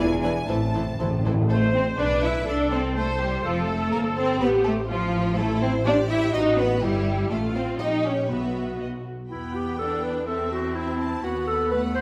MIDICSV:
0, 0, Header, 1, 9, 480
1, 0, Start_track
1, 0, Key_signature, 0, "minor"
1, 0, Tempo, 500000
1, 469, Time_signature, 2, 2, 24, 8
1, 1906, Tempo, 483481
1, 5266, Key_signature, 1, "minor"
1, 6706, Tempo, 496689
1, 9106, Tempo, 481928
1, 11804, End_track
2, 0, Start_track
2, 0, Title_t, "Violin section"
2, 0, Program_c, 0, 48
2, 0, Note_on_c, 0, 80, 100
2, 209, Note_off_c, 0, 80, 0
2, 221, Note_on_c, 0, 80, 93
2, 461, Note_off_c, 0, 80, 0
2, 473, Note_on_c, 0, 81, 84
2, 1197, Note_off_c, 0, 81, 0
2, 1431, Note_on_c, 0, 72, 62
2, 1871, Note_off_c, 0, 72, 0
2, 1915, Note_on_c, 0, 68, 59
2, 2362, Note_off_c, 0, 68, 0
2, 2394, Note_on_c, 0, 69, 70
2, 3795, Note_off_c, 0, 69, 0
2, 3833, Note_on_c, 0, 72, 69
2, 5226, Note_off_c, 0, 72, 0
2, 5279, Note_on_c, 0, 72, 71
2, 6193, Note_off_c, 0, 72, 0
2, 6226, Note_on_c, 0, 71, 67
2, 6672, Note_off_c, 0, 71, 0
2, 6716, Note_on_c, 0, 76, 65
2, 7149, Note_off_c, 0, 76, 0
2, 7186, Note_on_c, 0, 77, 64
2, 7626, Note_off_c, 0, 77, 0
2, 7663, Note_on_c, 0, 79, 59
2, 8143, Note_off_c, 0, 79, 0
2, 8154, Note_on_c, 0, 76, 53
2, 8621, Note_off_c, 0, 76, 0
2, 8636, Note_on_c, 0, 75, 49
2, 8713, Note_off_c, 0, 75, 0
2, 9106, Note_on_c, 0, 83, 48
2, 9558, Note_off_c, 0, 83, 0
2, 9607, Note_on_c, 0, 79, 44
2, 10082, Note_off_c, 0, 79, 0
2, 10084, Note_on_c, 0, 81, 49
2, 11019, Note_off_c, 0, 81, 0
2, 11039, Note_on_c, 0, 83, 53
2, 11804, Note_off_c, 0, 83, 0
2, 11804, End_track
3, 0, Start_track
3, 0, Title_t, "Violin section"
3, 0, Program_c, 1, 48
3, 227, Note_on_c, 1, 71, 57
3, 230, Note_on_c, 1, 74, 58
3, 304, Note_off_c, 1, 71, 0
3, 307, Note_off_c, 1, 74, 0
3, 464, Note_on_c, 1, 69, 54
3, 465, Note_on_c, 1, 72, 56
3, 541, Note_off_c, 1, 69, 0
3, 541, Note_off_c, 1, 72, 0
3, 712, Note_on_c, 1, 69, 53
3, 716, Note_on_c, 1, 72, 52
3, 788, Note_off_c, 1, 69, 0
3, 792, Note_off_c, 1, 72, 0
3, 956, Note_on_c, 1, 72, 53
3, 957, Note_on_c, 1, 69, 55
3, 1033, Note_off_c, 1, 72, 0
3, 1034, Note_off_c, 1, 69, 0
3, 1199, Note_on_c, 1, 69, 52
3, 1199, Note_on_c, 1, 72, 54
3, 1276, Note_off_c, 1, 69, 0
3, 1276, Note_off_c, 1, 72, 0
3, 1435, Note_on_c, 1, 69, 70
3, 1511, Note_off_c, 1, 69, 0
3, 1681, Note_on_c, 1, 72, 70
3, 1907, Note_off_c, 1, 72, 0
3, 1915, Note_on_c, 1, 74, 80
3, 2149, Note_on_c, 1, 76, 81
3, 2153, Note_off_c, 1, 74, 0
3, 2391, Note_off_c, 1, 76, 0
3, 2398, Note_on_c, 1, 74, 74
3, 2477, Note_off_c, 1, 74, 0
3, 2636, Note_on_c, 1, 72, 71
3, 2716, Note_off_c, 1, 72, 0
3, 2875, Note_on_c, 1, 69, 73
3, 3109, Note_on_c, 1, 67, 72
3, 3111, Note_off_c, 1, 69, 0
3, 3350, Note_on_c, 1, 65, 72
3, 3352, Note_off_c, 1, 67, 0
3, 3587, Note_off_c, 1, 65, 0
3, 3588, Note_on_c, 1, 69, 72
3, 3823, Note_on_c, 1, 70, 77
3, 3830, Note_off_c, 1, 69, 0
3, 3903, Note_off_c, 1, 70, 0
3, 4067, Note_on_c, 1, 72, 79
3, 4303, Note_off_c, 1, 72, 0
3, 4305, Note_on_c, 1, 71, 86
3, 4384, Note_off_c, 1, 71, 0
3, 4539, Note_on_c, 1, 69, 78
3, 4619, Note_off_c, 1, 69, 0
3, 4784, Note_on_c, 1, 65, 81
3, 5254, Note_off_c, 1, 65, 0
3, 5260, Note_on_c, 1, 69, 81
3, 5504, Note_off_c, 1, 69, 0
3, 5512, Note_on_c, 1, 72, 78
3, 5747, Note_on_c, 1, 74, 88
3, 5750, Note_off_c, 1, 72, 0
3, 5985, Note_on_c, 1, 76, 89
3, 5988, Note_off_c, 1, 74, 0
3, 6223, Note_on_c, 1, 75, 82
3, 6225, Note_off_c, 1, 76, 0
3, 6302, Note_off_c, 1, 75, 0
3, 6460, Note_on_c, 1, 71, 78
3, 6698, Note_off_c, 1, 71, 0
3, 6702, Note_on_c, 1, 67, 76
3, 7167, Note_on_c, 1, 69, 69
3, 7175, Note_off_c, 1, 67, 0
3, 7244, Note_off_c, 1, 69, 0
3, 7410, Note_on_c, 1, 72, 68
3, 7487, Note_off_c, 1, 72, 0
3, 7645, Note_on_c, 1, 75, 72
3, 7723, Note_off_c, 1, 75, 0
3, 7885, Note_on_c, 1, 73, 57
3, 8128, Note_on_c, 1, 71, 53
3, 8129, Note_off_c, 1, 73, 0
3, 8618, Note_off_c, 1, 71, 0
3, 9104, Note_on_c, 1, 79, 44
3, 10033, Note_off_c, 1, 79, 0
3, 10078, Note_on_c, 1, 76, 47
3, 10548, Note_off_c, 1, 76, 0
3, 10560, Note_on_c, 1, 76, 50
3, 10792, Note_off_c, 1, 76, 0
3, 10792, Note_on_c, 1, 81, 54
3, 11027, Note_off_c, 1, 81, 0
3, 11036, Note_on_c, 1, 78, 50
3, 11497, Note_off_c, 1, 78, 0
3, 11509, Note_on_c, 1, 78, 51
3, 11804, Note_off_c, 1, 78, 0
3, 11804, End_track
4, 0, Start_track
4, 0, Title_t, "Clarinet"
4, 0, Program_c, 2, 71
4, 9111, Note_on_c, 2, 64, 65
4, 9351, Note_on_c, 2, 67, 64
4, 9366, Note_off_c, 2, 64, 0
4, 9580, Note_off_c, 2, 67, 0
4, 9586, Note_on_c, 2, 69, 67
4, 9831, Note_on_c, 2, 71, 73
4, 9846, Note_off_c, 2, 69, 0
4, 10059, Note_off_c, 2, 71, 0
4, 10065, Note_on_c, 2, 69, 62
4, 10305, Note_off_c, 2, 69, 0
4, 10315, Note_on_c, 2, 66, 68
4, 10549, Note_on_c, 2, 64, 71
4, 10564, Note_off_c, 2, 66, 0
4, 11016, Note_off_c, 2, 64, 0
4, 11022, Note_on_c, 2, 66, 69
4, 11259, Note_off_c, 2, 66, 0
4, 11265, Note_on_c, 2, 69, 78
4, 11499, Note_off_c, 2, 69, 0
4, 11505, Note_on_c, 2, 71, 77
4, 11613, Note_off_c, 2, 71, 0
4, 11740, Note_on_c, 2, 72, 78
4, 11804, Note_off_c, 2, 72, 0
4, 11804, End_track
5, 0, Start_track
5, 0, Title_t, "Viola section"
5, 0, Program_c, 3, 48
5, 231, Note_on_c, 3, 64, 58
5, 233, Note_on_c, 3, 52, 60
5, 308, Note_off_c, 3, 64, 0
5, 310, Note_off_c, 3, 52, 0
5, 471, Note_on_c, 3, 52, 61
5, 472, Note_on_c, 3, 64, 63
5, 548, Note_off_c, 3, 52, 0
5, 549, Note_off_c, 3, 64, 0
5, 711, Note_on_c, 3, 52, 50
5, 713, Note_on_c, 3, 64, 52
5, 788, Note_off_c, 3, 52, 0
5, 790, Note_off_c, 3, 64, 0
5, 959, Note_on_c, 3, 52, 54
5, 959, Note_on_c, 3, 64, 52
5, 1036, Note_off_c, 3, 52, 0
5, 1036, Note_off_c, 3, 64, 0
5, 1202, Note_on_c, 3, 64, 51
5, 1203, Note_on_c, 3, 52, 50
5, 1279, Note_off_c, 3, 64, 0
5, 1280, Note_off_c, 3, 52, 0
5, 1440, Note_on_c, 3, 72, 83
5, 1876, Note_off_c, 3, 72, 0
5, 1908, Note_on_c, 3, 71, 76
5, 2392, Note_off_c, 3, 71, 0
5, 2392, Note_on_c, 3, 69, 76
5, 2866, Note_off_c, 3, 69, 0
5, 2877, Note_on_c, 3, 72, 80
5, 3347, Note_off_c, 3, 72, 0
5, 3362, Note_on_c, 3, 69, 84
5, 4313, Note_off_c, 3, 69, 0
5, 4318, Note_on_c, 3, 67, 89
5, 4782, Note_off_c, 3, 67, 0
5, 4797, Note_on_c, 3, 65, 73
5, 5261, Note_off_c, 3, 65, 0
5, 5277, Note_on_c, 3, 64, 81
5, 5743, Note_off_c, 3, 64, 0
5, 5755, Note_on_c, 3, 67, 84
5, 6221, Note_off_c, 3, 67, 0
5, 6228, Note_on_c, 3, 66, 72
5, 6707, Note_off_c, 3, 66, 0
5, 6712, Note_on_c, 3, 64, 75
5, 7179, Note_on_c, 3, 65, 76
5, 7180, Note_off_c, 3, 64, 0
5, 7646, Note_off_c, 3, 65, 0
5, 7660, Note_on_c, 3, 67, 65
5, 8142, Note_off_c, 3, 67, 0
5, 8145, Note_on_c, 3, 66, 57
5, 8869, Note_off_c, 3, 66, 0
5, 9108, Note_on_c, 3, 59, 48
5, 10036, Note_off_c, 3, 59, 0
5, 10080, Note_on_c, 3, 60, 51
5, 11036, Note_off_c, 3, 60, 0
5, 11039, Note_on_c, 3, 59, 54
5, 11503, Note_off_c, 3, 59, 0
5, 11512, Note_on_c, 3, 57, 55
5, 11804, Note_off_c, 3, 57, 0
5, 11804, End_track
6, 0, Start_track
6, 0, Title_t, "French horn section"
6, 0, Program_c, 4, 60
6, 0, Note_on_c, 4, 62, 74
6, 0, Note_on_c, 4, 64, 76
6, 468, Note_off_c, 4, 64, 0
6, 475, Note_off_c, 4, 62, 0
6, 480, Note_on_c, 4, 60, 62
6, 480, Note_on_c, 4, 64, 61
6, 902, Note_off_c, 4, 60, 0
6, 902, Note_off_c, 4, 64, 0
6, 962, Note_on_c, 4, 60, 65
6, 1183, Note_off_c, 4, 60, 0
6, 1186, Note_on_c, 4, 64, 67
6, 1430, Note_off_c, 4, 64, 0
6, 11804, End_track
7, 0, Start_track
7, 0, Title_t, "Cello section"
7, 0, Program_c, 5, 48
7, 0, Note_on_c, 5, 40, 86
7, 411, Note_off_c, 5, 40, 0
7, 466, Note_on_c, 5, 45, 68
7, 895, Note_off_c, 5, 45, 0
7, 953, Note_on_c, 5, 45, 66
7, 1378, Note_off_c, 5, 45, 0
7, 1432, Note_on_c, 5, 57, 86
7, 1653, Note_off_c, 5, 57, 0
7, 1668, Note_on_c, 5, 60, 80
7, 1745, Note_off_c, 5, 60, 0
7, 1905, Note_on_c, 5, 62, 101
7, 2143, Note_off_c, 5, 62, 0
7, 2151, Note_on_c, 5, 64, 92
7, 2391, Note_on_c, 5, 62, 91
7, 2392, Note_off_c, 5, 64, 0
7, 2629, Note_off_c, 5, 62, 0
7, 2638, Note_on_c, 5, 60, 86
7, 2878, Note_off_c, 5, 60, 0
7, 2879, Note_on_c, 5, 57, 91
7, 2958, Note_off_c, 5, 57, 0
7, 3116, Note_on_c, 5, 55, 82
7, 3351, Note_off_c, 5, 55, 0
7, 3361, Note_on_c, 5, 53, 84
7, 3592, Note_off_c, 5, 53, 0
7, 3600, Note_on_c, 5, 57, 82
7, 3831, Note_off_c, 5, 57, 0
7, 3838, Note_on_c, 5, 58, 93
7, 4073, Note_off_c, 5, 58, 0
7, 4081, Note_on_c, 5, 60, 90
7, 4310, Note_off_c, 5, 60, 0
7, 4317, Note_on_c, 5, 59, 98
7, 4553, Note_off_c, 5, 59, 0
7, 4556, Note_on_c, 5, 57, 96
7, 4635, Note_off_c, 5, 57, 0
7, 4795, Note_on_c, 5, 53, 100
7, 5260, Note_off_c, 5, 53, 0
7, 5272, Note_on_c, 5, 57, 96
7, 5510, Note_off_c, 5, 57, 0
7, 5513, Note_on_c, 5, 60, 94
7, 5592, Note_off_c, 5, 60, 0
7, 5755, Note_on_c, 5, 62, 109
7, 5835, Note_off_c, 5, 62, 0
7, 5992, Note_on_c, 5, 64, 97
7, 6224, Note_off_c, 5, 64, 0
7, 6232, Note_on_c, 5, 63, 97
7, 6463, Note_off_c, 5, 63, 0
7, 6474, Note_on_c, 5, 59, 90
7, 6710, Note_off_c, 5, 59, 0
7, 6715, Note_on_c, 5, 55, 92
7, 7172, Note_off_c, 5, 55, 0
7, 7180, Note_on_c, 5, 57, 83
7, 7416, Note_off_c, 5, 57, 0
7, 7418, Note_on_c, 5, 60, 77
7, 7653, Note_on_c, 5, 63, 92
7, 7656, Note_off_c, 5, 60, 0
7, 7890, Note_off_c, 5, 63, 0
7, 7896, Note_on_c, 5, 61, 74
7, 8139, Note_off_c, 5, 61, 0
7, 8146, Note_on_c, 5, 59, 66
7, 8618, Note_off_c, 5, 59, 0
7, 9595, Note_on_c, 5, 62, 63
7, 10042, Note_off_c, 5, 62, 0
7, 10083, Note_on_c, 5, 60, 51
7, 11035, Note_on_c, 5, 59, 55
7, 11037, Note_off_c, 5, 60, 0
7, 11496, Note_off_c, 5, 59, 0
7, 11508, Note_on_c, 5, 59, 63
7, 11804, Note_off_c, 5, 59, 0
7, 11804, End_track
8, 0, Start_track
8, 0, Title_t, "Timpani"
8, 0, Program_c, 6, 47
8, 472, Note_on_c, 6, 45, 42
8, 530, Note_off_c, 6, 45, 0
8, 541, Note_on_c, 6, 45, 38
8, 606, Note_off_c, 6, 45, 0
8, 618, Note_on_c, 6, 45, 44
8, 680, Note_off_c, 6, 45, 0
8, 691, Note_on_c, 6, 45, 46
8, 747, Note_off_c, 6, 45, 0
8, 758, Note_on_c, 6, 45, 51
8, 825, Note_off_c, 6, 45, 0
8, 836, Note_on_c, 6, 45, 52
8, 897, Note_off_c, 6, 45, 0
8, 908, Note_on_c, 6, 45, 58
8, 981, Note_off_c, 6, 45, 0
8, 991, Note_on_c, 6, 45, 73
8, 1050, Note_off_c, 6, 45, 0
8, 1062, Note_on_c, 6, 45, 74
8, 1129, Note_off_c, 6, 45, 0
8, 1141, Note_on_c, 6, 45, 78
8, 1200, Note_off_c, 6, 45, 0
8, 1212, Note_on_c, 6, 45, 93
8, 1276, Note_off_c, 6, 45, 0
8, 1288, Note_on_c, 6, 45, 97
8, 1347, Note_off_c, 6, 45, 0
8, 1358, Note_on_c, 6, 45, 101
8, 1428, Note_off_c, 6, 45, 0
8, 8139, Note_on_c, 6, 47, 76
8, 8590, Note_off_c, 6, 47, 0
8, 11804, End_track
9, 0, Start_track
9, 0, Title_t, "Double bass section"
9, 0, Program_c, 7, 48
9, 0, Note_on_c, 7, 28, 77
9, 412, Note_off_c, 7, 28, 0
9, 465, Note_on_c, 7, 33, 70
9, 895, Note_off_c, 7, 33, 0
9, 955, Note_on_c, 7, 33, 67
9, 1380, Note_off_c, 7, 33, 0
9, 1436, Note_on_c, 7, 33, 67
9, 1874, Note_off_c, 7, 33, 0
9, 1908, Note_on_c, 7, 35, 68
9, 2387, Note_on_c, 7, 36, 70
9, 2392, Note_off_c, 7, 35, 0
9, 3334, Note_off_c, 7, 36, 0
9, 3363, Note_on_c, 7, 29, 67
9, 3827, Note_off_c, 7, 29, 0
9, 3842, Note_on_c, 7, 31, 66
9, 4315, Note_off_c, 7, 31, 0
9, 4319, Note_on_c, 7, 33, 77
9, 6220, Note_off_c, 7, 33, 0
9, 6232, Note_on_c, 7, 33, 75
9, 6699, Note_off_c, 7, 33, 0
9, 6713, Note_on_c, 7, 31, 75
9, 7181, Note_off_c, 7, 31, 0
9, 7183, Note_on_c, 7, 33, 68
9, 7625, Note_off_c, 7, 33, 0
9, 7661, Note_on_c, 7, 34, 58
9, 8142, Note_off_c, 7, 34, 0
9, 8148, Note_on_c, 7, 35, 49
9, 8619, Note_off_c, 7, 35, 0
9, 8630, Note_on_c, 7, 35, 51
9, 8908, Note_off_c, 7, 35, 0
9, 9111, Note_on_c, 7, 40, 51
9, 10995, Note_off_c, 7, 40, 0
9, 11035, Note_on_c, 7, 39, 54
9, 11804, Note_off_c, 7, 39, 0
9, 11804, End_track
0, 0, End_of_file